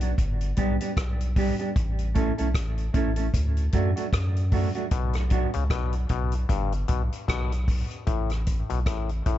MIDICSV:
0, 0, Header, 1, 5, 480
1, 0, Start_track
1, 0, Tempo, 789162
1, 1071, Time_signature, 4, 2, 24, 8
1, 5705, End_track
2, 0, Start_track
2, 0, Title_t, "Clean electric guitar"
2, 0, Program_c, 0, 27
2, 8, Note_on_c, 0, 66, 51
2, 11, Note_on_c, 0, 62, 59
2, 16, Note_on_c, 0, 59, 49
2, 17, Note_on_c, 0, 54, 46
2, 62, Note_off_c, 0, 66, 0
2, 64, Note_off_c, 0, 62, 0
2, 66, Note_off_c, 0, 59, 0
2, 67, Note_off_c, 0, 54, 0
2, 346, Note_on_c, 0, 55, 88
2, 350, Note_on_c, 0, 59, 106
2, 353, Note_on_c, 0, 62, 85
2, 356, Note_on_c, 0, 67, 101
2, 442, Note_off_c, 0, 55, 0
2, 445, Note_off_c, 0, 59, 0
2, 446, Note_off_c, 0, 62, 0
2, 447, Note_off_c, 0, 67, 0
2, 491, Note_on_c, 0, 67, 60
2, 494, Note_on_c, 0, 62, 60
2, 500, Note_on_c, 0, 55, 49
2, 500, Note_on_c, 0, 59, 57
2, 544, Note_off_c, 0, 67, 0
2, 545, Note_off_c, 0, 62, 0
2, 548, Note_off_c, 0, 55, 0
2, 548, Note_off_c, 0, 59, 0
2, 833, Note_on_c, 0, 55, 91
2, 836, Note_on_c, 0, 59, 89
2, 839, Note_on_c, 0, 62, 88
2, 842, Note_on_c, 0, 67, 105
2, 926, Note_off_c, 0, 55, 0
2, 927, Note_off_c, 0, 59, 0
2, 929, Note_off_c, 0, 62, 0
2, 930, Note_off_c, 0, 67, 0
2, 968, Note_on_c, 0, 67, 66
2, 973, Note_on_c, 0, 62, 68
2, 976, Note_on_c, 0, 59, 55
2, 979, Note_on_c, 0, 55, 59
2, 1022, Note_off_c, 0, 67, 0
2, 1024, Note_off_c, 0, 62, 0
2, 1026, Note_off_c, 0, 59, 0
2, 1028, Note_off_c, 0, 55, 0
2, 1305, Note_on_c, 0, 57, 99
2, 1309, Note_on_c, 0, 61, 91
2, 1313, Note_on_c, 0, 64, 95
2, 1315, Note_on_c, 0, 69, 101
2, 1402, Note_off_c, 0, 57, 0
2, 1404, Note_off_c, 0, 61, 0
2, 1406, Note_off_c, 0, 64, 0
2, 1407, Note_off_c, 0, 69, 0
2, 1447, Note_on_c, 0, 69, 71
2, 1451, Note_on_c, 0, 64, 69
2, 1455, Note_on_c, 0, 61, 71
2, 1458, Note_on_c, 0, 57, 60
2, 1502, Note_off_c, 0, 69, 0
2, 1504, Note_off_c, 0, 64, 0
2, 1506, Note_off_c, 0, 61, 0
2, 1507, Note_off_c, 0, 57, 0
2, 1785, Note_on_c, 0, 57, 74
2, 1789, Note_on_c, 0, 61, 83
2, 1794, Note_on_c, 0, 64, 87
2, 1798, Note_on_c, 0, 69, 77
2, 1882, Note_off_c, 0, 57, 0
2, 1884, Note_off_c, 0, 61, 0
2, 1886, Note_off_c, 0, 64, 0
2, 1888, Note_off_c, 0, 69, 0
2, 1924, Note_on_c, 0, 69, 58
2, 1927, Note_on_c, 0, 64, 49
2, 1929, Note_on_c, 0, 61, 58
2, 1933, Note_on_c, 0, 57, 48
2, 1980, Note_off_c, 0, 69, 0
2, 1982, Note_off_c, 0, 64, 0
2, 1983, Note_off_c, 0, 61, 0
2, 1985, Note_off_c, 0, 57, 0
2, 2270, Note_on_c, 0, 54, 85
2, 2271, Note_on_c, 0, 57, 93
2, 2277, Note_on_c, 0, 62, 90
2, 2279, Note_on_c, 0, 66, 93
2, 2364, Note_off_c, 0, 54, 0
2, 2365, Note_off_c, 0, 57, 0
2, 2368, Note_off_c, 0, 62, 0
2, 2369, Note_off_c, 0, 66, 0
2, 2409, Note_on_c, 0, 66, 64
2, 2413, Note_on_c, 0, 62, 58
2, 2416, Note_on_c, 0, 57, 54
2, 2419, Note_on_c, 0, 54, 52
2, 2462, Note_off_c, 0, 66, 0
2, 2465, Note_off_c, 0, 62, 0
2, 2466, Note_off_c, 0, 57, 0
2, 2467, Note_off_c, 0, 54, 0
2, 2750, Note_on_c, 0, 54, 77
2, 2753, Note_on_c, 0, 57, 89
2, 2756, Note_on_c, 0, 62, 84
2, 2760, Note_on_c, 0, 66, 97
2, 2844, Note_off_c, 0, 54, 0
2, 2846, Note_off_c, 0, 57, 0
2, 2847, Note_off_c, 0, 62, 0
2, 2849, Note_off_c, 0, 66, 0
2, 2890, Note_on_c, 0, 66, 74
2, 2892, Note_on_c, 0, 62, 72
2, 2897, Note_on_c, 0, 57, 64
2, 2902, Note_on_c, 0, 54, 59
2, 2943, Note_off_c, 0, 66, 0
2, 2944, Note_off_c, 0, 62, 0
2, 2947, Note_off_c, 0, 57, 0
2, 2949, Note_off_c, 0, 54, 0
2, 3227, Note_on_c, 0, 54, 77
2, 3232, Note_on_c, 0, 59, 81
2, 3234, Note_on_c, 0, 62, 83
2, 3238, Note_on_c, 0, 66, 99
2, 3323, Note_off_c, 0, 54, 0
2, 3325, Note_off_c, 0, 59, 0
2, 3326, Note_off_c, 0, 62, 0
2, 3329, Note_off_c, 0, 66, 0
2, 5705, End_track
3, 0, Start_track
3, 0, Title_t, "Clav"
3, 0, Program_c, 1, 7
3, 2991, Note_on_c, 1, 47, 90
3, 3135, Note_off_c, 1, 47, 0
3, 3369, Note_on_c, 1, 49, 79
3, 3430, Note_off_c, 1, 49, 0
3, 3470, Note_on_c, 1, 47, 89
3, 3614, Note_off_c, 1, 47, 0
3, 3712, Note_on_c, 1, 47, 93
3, 3856, Note_off_c, 1, 47, 0
3, 3947, Note_on_c, 1, 43, 83
3, 4092, Note_off_c, 1, 43, 0
3, 4186, Note_on_c, 1, 47, 76
3, 4271, Note_off_c, 1, 47, 0
3, 4428, Note_on_c, 1, 47, 79
3, 4573, Note_off_c, 1, 47, 0
3, 4907, Note_on_c, 1, 45, 90
3, 5052, Note_off_c, 1, 45, 0
3, 5290, Note_on_c, 1, 47, 72
3, 5350, Note_off_c, 1, 47, 0
3, 5391, Note_on_c, 1, 45, 82
3, 5535, Note_off_c, 1, 45, 0
3, 5633, Note_on_c, 1, 45, 84
3, 5705, Note_off_c, 1, 45, 0
3, 5705, End_track
4, 0, Start_track
4, 0, Title_t, "Sub bass"
4, 0, Program_c, 2, 38
4, 0, Note_on_c, 2, 35, 99
4, 86, Note_off_c, 2, 35, 0
4, 114, Note_on_c, 2, 31, 111
4, 325, Note_off_c, 2, 31, 0
4, 353, Note_on_c, 2, 35, 98
4, 476, Note_off_c, 2, 35, 0
4, 594, Note_on_c, 2, 35, 91
4, 928, Note_off_c, 2, 35, 0
4, 1076, Note_on_c, 2, 33, 97
4, 1409, Note_off_c, 2, 33, 0
4, 1461, Note_on_c, 2, 35, 87
4, 1545, Note_off_c, 2, 35, 0
4, 1552, Note_on_c, 2, 33, 88
4, 1763, Note_off_c, 2, 33, 0
4, 1794, Note_on_c, 2, 33, 97
4, 2005, Note_off_c, 2, 33, 0
4, 2035, Note_on_c, 2, 38, 104
4, 2245, Note_off_c, 2, 38, 0
4, 2276, Note_on_c, 2, 42, 81
4, 2397, Note_off_c, 2, 42, 0
4, 2513, Note_on_c, 2, 42, 98
4, 2847, Note_off_c, 2, 42, 0
4, 2995, Note_on_c, 2, 35, 116
4, 3328, Note_off_c, 2, 35, 0
4, 3380, Note_on_c, 2, 37, 101
4, 3465, Note_off_c, 2, 37, 0
4, 3472, Note_on_c, 2, 35, 96
4, 3683, Note_off_c, 2, 35, 0
4, 3713, Note_on_c, 2, 35, 101
4, 3924, Note_off_c, 2, 35, 0
4, 3955, Note_on_c, 2, 31, 118
4, 4165, Note_off_c, 2, 31, 0
4, 4197, Note_on_c, 2, 35, 88
4, 4318, Note_off_c, 2, 35, 0
4, 4435, Note_on_c, 2, 35, 94
4, 4768, Note_off_c, 2, 35, 0
4, 4914, Note_on_c, 2, 33, 94
4, 5248, Note_off_c, 2, 33, 0
4, 5300, Note_on_c, 2, 35, 83
4, 5384, Note_off_c, 2, 35, 0
4, 5397, Note_on_c, 2, 33, 84
4, 5606, Note_off_c, 2, 33, 0
4, 5637, Note_on_c, 2, 33, 97
4, 5705, Note_off_c, 2, 33, 0
4, 5705, End_track
5, 0, Start_track
5, 0, Title_t, "Drums"
5, 4, Note_on_c, 9, 42, 58
5, 65, Note_off_c, 9, 42, 0
5, 110, Note_on_c, 9, 36, 88
5, 111, Note_on_c, 9, 42, 76
5, 170, Note_off_c, 9, 36, 0
5, 172, Note_off_c, 9, 42, 0
5, 247, Note_on_c, 9, 42, 47
5, 308, Note_off_c, 9, 42, 0
5, 344, Note_on_c, 9, 42, 70
5, 351, Note_on_c, 9, 36, 81
5, 405, Note_off_c, 9, 42, 0
5, 411, Note_off_c, 9, 36, 0
5, 490, Note_on_c, 9, 42, 62
5, 551, Note_off_c, 9, 42, 0
5, 589, Note_on_c, 9, 36, 101
5, 590, Note_on_c, 9, 42, 77
5, 593, Note_on_c, 9, 37, 116
5, 650, Note_off_c, 9, 36, 0
5, 650, Note_off_c, 9, 42, 0
5, 653, Note_off_c, 9, 37, 0
5, 733, Note_on_c, 9, 42, 50
5, 794, Note_off_c, 9, 42, 0
5, 828, Note_on_c, 9, 46, 79
5, 829, Note_on_c, 9, 36, 102
5, 889, Note_off_c, 9, 46, 0
5, 890, Note_off_c, 9, 36, 0
5, 971, Note_on_c, 9, 42, 57
5, 1031, Note_off_c, 9, 42, 0
5, 1070, Note_on_c, 9, 36, 105
5, 1071, Note_on_c, 9, 42, 80
5, 1131, Note_off_c, 9, 36, 0
5, 1131, Note_off_c, 9, 42, 0
5, 1208, Note_on_c, 9, 42, 50
5, 1269, Note_off_c, 9, 42, 0
5, 1309, Note_on_c, 9, 42, 70
5, 1313, Note_on_c, 9, 36, 86
5, 1370, Note_off_c, 9, 42, 0
5, 1374, Note_off_c, 9, 36, 0
5, 1449, Note_on_c, 9, 42, 51
5, 1510, Note_off_c, 9, 42, 0
5, 1548, Note_on_c, 9, 36, 112
5, 1551, Note_on_c, 9, 37, 121
5, 1551, Note_on_c, 9, 42, 106
5, 1609, Note_off_c, 9, 36, 0
5, 1612, Note_off_c, 9, 37, 0
5, 1612, Note_off_c, 9, 42, 0
5, 1689, Note_on_c, 9, 42, 47
5, 1750, Note_off_c, 9, 42, 0
5, 1789, Note_on_c, 9, 42, 74
5, 1790, Note_on_c, 9, 36, 94
5, 1850, Note_off_c, 9, 42, 0
5, 1851, Note_off_c, 9, 36, 0
5, 1922, Note_on_c, 9, 42, 60
5, 1983, Note_off_c, 9, 42, 0
5, 2030, Note_on_c, 9, 36, 98
5, 2032, Note_on_c, 9, 42, 77
5, 2091, Note_off_c, 9, 36, 0
5, 2093, Note_off_c, 9, 42, 0
5, 2170, Note_on_c, 9, 42, 41
5, 2230, Note_off_c, 9, 42, 0
5, 2266, Note_on_c, 9, 42, 72
5, 2271, Note_on_c, 9, 36, 79
5, 2327, Note_off_c, 9, 42, 0
5, 2332, Note_off_c, 9, 36, 0
5, 2413, Note_on_c, 9, 42, 59
5, 2474, Note_off_c, 9, 42, 0
5, 2510, Note_on_c, 9, 36, 103
5, 2513, Note_on_c, 9, 42, 81
5, 2516, Note_on_c, 9, 37, 116
5, 2571, Note_off_c, 9, 36, 0
5, 2574, Note_off_c, 9, 42, 0
5, 2577, Note_off_c, 9, 37, 0
5, 2654, Note_on_c, 9, 42, 53
5, 2715, Note_off_c, 9, 42, 0
5, 2747, Note_on_c, 9, 46, 71
5, 2750, Note_on_c, 9, 36, 98
5, 2808, Note_off_c, 9, 46, 0
5, 2810, Note_off_c, 9, 36, 0
5, 2887, Note_on_c, 9, 42, 53
5, 2948, Note_off_c, 9, 42, 0
5, 2986, Note_on_c, 9, 42, 77
5, 2989, Note_on_c, 9, 36, 110
5, 3047, Note_off_c, 9, 42, 0
5, 3050, Note_off_c, 9, 36, 0
5, 3122, Note_on_c, 9, 42, 53
5, 3133, Note_on_c, 9, 37, 68
5, 3183, Note_off_c, 9, 42, 0
5, 3194, Note_off_c, 9, 37, 0
5, 3224, Note_on_c, 9, 42, 74
5, 3231, Note_on_c, 9, 36, 91
5, 3285, Note_off_c, 9, 42, 0
5, 3291, Note_off_c, 9, 36, 0
5, 3366, Note_on_c, 9, 42, 49
5, 3427, Note_off_c, 9, 42, 0
5, 3467, Note_on_c, 9, 36, 107
5, 3470, Note_on_c, 9, 37, 106
5, 3470, Note_on_c, 9, 42, 85
5, 3528, Note_off_c, 9, 36, 0
5, 3530, Note_off_c, 9, 37, 0
5, 3531, Note_off_c, 9, 42, 0
5, 3604, Note_on_c, 9, 42, 49
5, 3665, Note_off_c, 9, 42, 0
5, 3705, Note_on_c, 9, 42, 72
5, 3709, Note_on_c, 9, 36, 92
5, 3765, Note_off_c, 9, 42, 0
5, 3770, Note_off_c, 9, 36, 0
5, 3842, Note_on_c, 9, 42, 56
5, 3903, Note_off_c, 9, 42, 0
5, 3950, Note_on_c, 9, 36, 97
5, 3950, Note_on_c, 9, 42, 80
5, 4010, Note_off_c, 9, 36, 0
5, 4011, Note_off_c, 9, 42, 0
5, 4089, Note_on_c, 9, 42, 46
5, 4150, Note_off_c, 9, 42, 0
5, 4184, Note_on_c, 9, 42, 69
5, 4192, Note_on_c, 9, 36, 81
5, 4245, Note_off_c, 9, 42, 0
5, 4253, Note_off_c, 9, 36, 0
5, 4334, Note_on_c, 9, 42, 56
5, 4394, Note_off_c, 9, 42, 0
5, 4431, Note_on_c, 9, 36, 103
5, 4434, Note_on_c, 9, 42, 82
5, 4437, Note_on_c, 9, 37, 111
5, 4492, Note_off_c, 9, 36, 0
5, 4494, Note_off_c, 9, 42, 0
5, 4498, Note_off_c, 9, 37, 0
5, 4575, Note_on_c, 9, 42, 53
5, 4636, Note_off_c, 9, 42, 0
5, 4669, Note_on_c, 9, 46, 77
5, 4670, Note_on_c, 9, 36, 89
5, 4730, Note_off_c, 9, 46, 0
5, 4731, Note_off_c, 9, 36, 0
5, 4809, Note_on_c, 9, 42, 53
5, 4870, Note_off_c, 9, 42, 0
5, 4907, Note_on_c, 9, 42, 67
5, 4910, Note_on_c, 9, 36, 104
5, 4968, Note_off_c, 9, 42, 0
5, 4971, Note_off_c, 9, 36, 0
5, 5046, Note_on_c, 9, 42, 53
5, 5057, Note_on_c, 9, 37, 62
5, 5107, Note_off_c, 9, 42, 0
5, 5118, Note_off_c, 9, 37, 0
5, 5149, Note_on_c, 9, 42, 70
5, 5153, Note_on_c, 9, 36, 80
5, 5210, Note_off_c, 9, 42, 0
5, 5214, Note_off_c, 9, 36, 0
5, 5291, Note_on_c, 9, 42, 47
5, 5351, Note_off_c, 9, 42, 0
5, 5390, Note_on_c, 9, 36, 113
5, 5392, Note_on_c, 9, 37, 104
5, 5393, Note_on_c, 9, 42, 97
5, 5451, Note_off_c, 9, 36, 0
5, 5453, Note_off_c, 9, 37, 0
5, 5453, Note_off_c, 9, 42, 0
5, 5530, Note_on_c, 9, 42, 47
5, 5591, Note_off_c, 9, 42, 0
5, 5631, Note_on_c, 9, 42, 71
5, 5633, Note_on_c, 9, 36, 93
5, 5692, Note_off_c, 9, 42, 0
5, 5694, Note_off_c, 9, 36, 0
5, 5705, End_track
0, 0, End_of_file